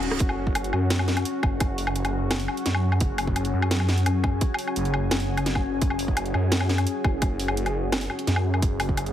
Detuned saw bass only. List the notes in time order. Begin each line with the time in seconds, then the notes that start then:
Already playing: E1
0.20 F#1
0.73 F#2
1.43 F#1
2.66 F#2
3.01 F#1
3.54 F#2
4.06 F#2
4.76 F#1
5.12 F#1
5.82 F#1
6.34 F#2
7.05 F#1
8.27 F#2
8.62 F#1